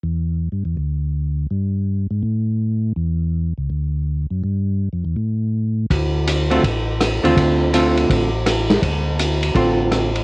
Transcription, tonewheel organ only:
X:1
M:4/4
L:1/8
Q:"Swing" 1/4=164
K:Dm
V:1 name="Tonewheel organ" clef=bass
E,,2- (3E,, G,, E,, D,,4 | G,,3 ^G,, A,,4 | E,,3 ^C,, D,,3 ^F,, | G,,2- (3G,, F,, E,, A,,4 |
D,,4 A,,,3 _E,, | D,,4 A,,,4 | D,,4 A,,,4 |]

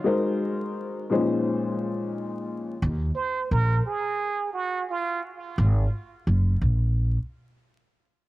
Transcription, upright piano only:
X:1
M:4/4
L:1/8
Q:"Swing 16ths" 1/4=87
K:Ebdor
V:1 name="Upright piano"
[A,EGBc]3 [B,,F,A,DEc]4- [B,,F,A,DEc] | z8 | z8 |]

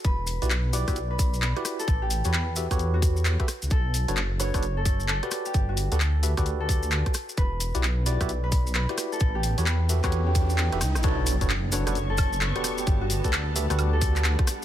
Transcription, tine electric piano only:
X:1
M:4/4
L:1/16
Q:"Swing 16ths" 1/4=131
K:Edor
V:1 name="Tine electric piano"
z3 [EFGBd] z2 [EFGBd] [EFGBe] z4 z [EFGBd]3 | z3 [FGABc] z2 [FGABe] [FGABc]6 [FGABe] z2 | z3 [DFABc] z2 [DFABc] [DFABd] z4 z [FGABd]3- | [FGABd]3 [FGABd] z2 [FGABe] [FGABd]6- [FGABd] z2 |
z3 [EFGBd] z2 [EFGBd] [EFGBe] z4 z [EFGBd]3 | z3 [FGABc] z2 [FGABe] [FGABc]6 [FGABe] z2 | [DFABc]3 [DFABc] z2 [DFABc] [DFABd] z4 z [FGABd]3- | [FGABd]3 [FGABd] z2 [FGABe] [FGABd]6- [FGABd] z2 |]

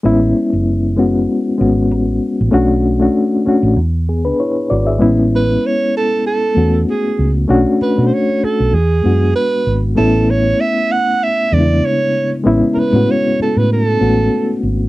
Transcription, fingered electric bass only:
X:1
M:4/4
L:1/16
Q:"Swing 16ths" 1/4=97
K:A
V:1 name="Fingered electric bass" clef=bass
A,,,2 z F,,,4- F,,, z2 G,,,2 A,,,2 z A,,, | B,,,4 z3 A,,, E,,4 z2 G,,,2 | A,,,4 z6 E,,2 z2 C,,2 | B,,, z2 B,, z3 B,,, E,,2 F,,2 z2 G,,,2 |
A,,,4 z6 E,,2 z4 | A,,, z2 A,, z3 A,,3 A,,,2 z2 G,,,2 |]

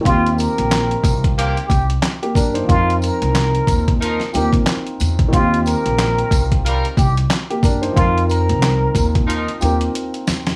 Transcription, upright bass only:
X:1
M:4/4
L:1/16
Q:"Swing 16ths" 1/4=91
K:Eb
V:1 name="Upright bass" clef=bass
E,,3 B,,,3 C,,4 C,,2 z2 _G,,2 | F,,3 C,,3 E,,4 E,,2 z2 _F,,2 | E,,3 B,,,3 C,,4 C,,2 z2 _G,,2 | F,,3 C,,3 E,,4 E,,2 z2 _F,,2 |]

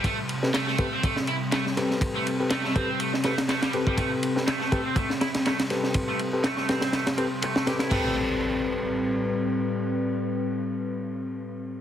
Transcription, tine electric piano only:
X:1
M:4/4
L:1/16
Q:"Swing 16ths" 1/4=122
K:Am
V:1 name="Tine electric piano"
z3 [CGAB] z2 [CGAB] z6 z [CGAB]2- | [CGAB]3 [CGAB] z2 [CGAB] z3 [CGAB] z3 [CGAB]2- | [CGAB]3 [CGAB] z2 [CGAB] z6 z [CGAB]2- | [CGAB]3 [CGAB] z2 [CGAB] z3 [CGAB] z3 [CGAB]2 |
[CGAB]16- | [CGAB]16 |]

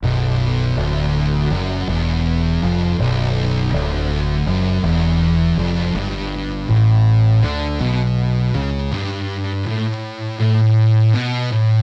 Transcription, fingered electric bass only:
X:1
M:4/4
L:1/8
Q:1/4=81
K:Bm
V:1 name="Fingered electric bass" clef=bass
B,,,,2 D,,,2 F,,, E,,,2 ^E,,, | B,,,,2 D,,,2 F,,, E,,,2 ^E,,, | G,,,2 A,,,2 D,, B,,,2 C,, | z8 |]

